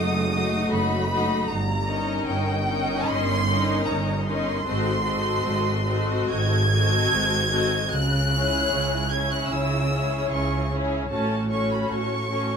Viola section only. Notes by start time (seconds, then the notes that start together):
Already playing: A3 D#4
0.32 A3 D#4
1.10 A3 D#4
1.86 C#4 D#4
2.66 C#4 D#4
3.48 C#4 D#4
4.26 C#4 D#4
4.65 C4 F#4
5.04 C4 F#4
5.86 C4 F#4
6.72 C4 F#4
7.52 C4 F#4
8.32 C#4 E4
9.12 C#4 E4
9.92 C#4 E4
10.71 C#4 E4
11.12 C#4 F#4
11.52 C#4 F#4
12.31 C#4 F#4